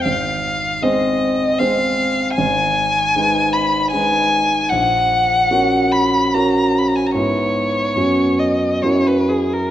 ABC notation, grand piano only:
X:1
M:3/4
L:1/8
Q:1/4=76
K:Fdor
V:1 name="Grand piano"
A,,,2 [A,Cc]2 [A,Cc]2 | [K:F#mix] G,,,2 [G,DB]2 [G,DB]2 | A,,,2 [CFA]2 [CFA]2 | [G,,B,EB]2 [F,,B,FB]2 [F,,EFA]2 |]